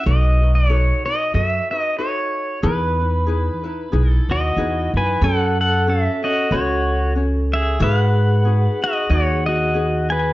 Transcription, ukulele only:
X:1
M:4/4
L:1/8
Q:"Swing" 1/4=93
K:F#dor
V:1 name="Ukulele"
[DFAB] [DFB] [DFAB] [DFB] [FAB] [DFB] [DFAB]2 | [DEGB] [DEB] [DEGB] [DEB] [DEGB] [DEB] [DEGB]2 | [CFAc]2 [CFAc] [CFc] [CFAc]2 [CFc]2 | [DFGB]2 [DFGB] [DFB] [DFGB]2 [DFGB]2 |]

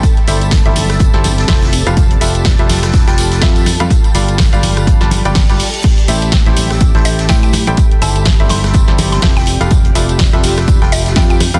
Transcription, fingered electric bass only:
X:1
M:4/4
L:1/16
Q:"Swing 16ths" 1/4=124
K:Flyd
V:1 name="Fingered electric bass" clef=bass
z2 G,,,3 G,,,4 G,,,3 z3 F,,,- | F,,,2 F,,,3 F,,,4 F,,,3 F,,3 F,, | z2 G,,,3 G,,,4 G,,,2 G,,,2 G,,, z2 | z2 A,,,3 A,,,4 A,,,3 A,,3 A,,, |
z2 G,,,3 G,,,4 G,,,3 F,,,3 F,,,- | F,,,2 F,,,3 F,,,4 F,,,3 F,,3 F,, |]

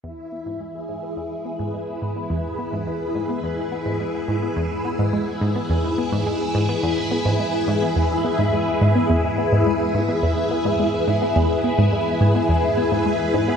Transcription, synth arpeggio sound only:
X:1
M:4/4
L:1/16
Q:1/4=106
K:E
V:1 name="Synth arpeggio sound" clef=bass
E,, z B, G,, G, z G,, B, E,, z B, G,, G, z G,, B, | E,, z B, G,, G, z G,, B, E,, z B, G,, G, z G,, B, | E,, z B, G,, G, z G,, B, E,, z B, G,, G, z G,, B, | E,, z B, G,, G, z G,, B, E,, z B, G,, G, z G,, B, |
E,, z B, G,, G, z G,, B, E,, z B, G,, G, z G,, B, | E,, z B, G,, G, z G,, B, E,, z B, G,, G, z G,, B, |]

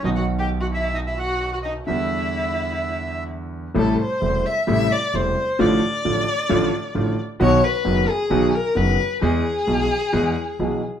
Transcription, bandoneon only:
X:1
M:4/4
L:1/16
Q:1/4=131
K:Em
V:1 name="Bandoneon"
^d f2 g2 f e2 d e f3 f d2 | e12 z4 | [K:Am] z16 | z16 |
z16 | z16 |]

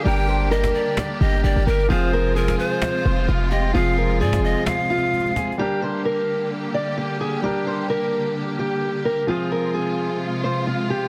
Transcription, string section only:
X:1
M:4/4
L:1/8
Q:1/4=130
K:Gphr
V:1 name="String section"
[D,B,G]8 | [C,A,F]8- | [C,A,F]8 | [D,B,G]8- |
[D,B,G]8 | [C,A,F]8 |]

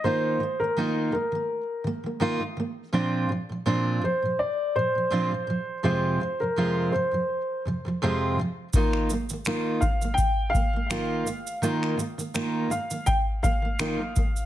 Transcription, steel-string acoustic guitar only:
X:1
M:4/4
L:1/16
Q:"Swing 16ths" 1/4=83
K:Bbmix
V:1 name="Steel-string acoustic guitar" clef=bass
[E,B,EF]2 [E,B,] [E,B,] [E,B,EF]2 [E,B,] [E,B,]2 z [E,B,] [E,B,] [E,B,EF] [E,B,] [E,B,]2 | [B,,F,CDF]2 [B,,F,] [B,,F,] [B,,F,CDF]2 [B,,F,] [B,,F,]2 z [B,,F,] [B,,F,] [B,,F,CDF] [B,,F,] [B,,F,]2 | [F,,C,F,A,CF]2 [F,,C,] [F,,C,F,] [F,,C,F,A,CF]2 [F,,C,F,] [F,,C,F,]2 z [F,,C,F,] [F,,C,F,] [F,,C,F,A,CF]2 [F,,C,F,]2 | [E,B,EF]2 [E,B,] [E,B,] [E,B,EF]2 [E,B,] [E,B,]2 z [E,B,] [E,B,] [E,B,EF]2 [E,B,]2 |
[E,B,EF]2 [E,B,] [E,B,] [E,B,EF]2 E, [E,B,]2 z [E,B,] [E,B,] [E,B,EF] [E,B,] [E,B,]2 |]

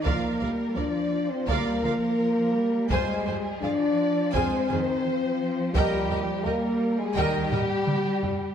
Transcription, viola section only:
X:1
M:4/4
L:1/8
Q:1/4=84
K:Bbmix
V:1 name="Viola section"
[FB] [FB] [FB] z [FB] [FB] z2 | [Fc] [Fc] [FA] z [FA] [FA] z2 | [GB] [GB] [GB] z [GB] [GB] z2 |]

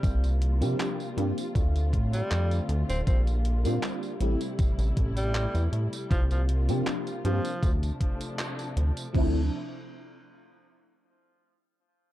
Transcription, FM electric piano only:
X:1
M:4/4
L:1/16
Q:1/4=79
K:Dm
V:1 name="FM electric piano"
z3 [F,B,CDG] z2 [F,B,CDG] z8 z | z3 [G,B,CDF] z2 [G,A,CEG] z8 z | z3 [F,B,CDG] z2 [F,B,CDG] z8 z | [F,A,CDE]2 z12 z2 |]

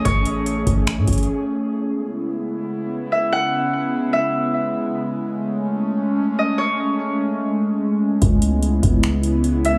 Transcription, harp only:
X:1
M:4/4
L:1/8
Q:1/4=147
K:C#m
V:1 name="Harp"
c2 z6 | z6 z e | f2 z2 e2 z2 | z6 z d |
c2 z6 | z6 z e |]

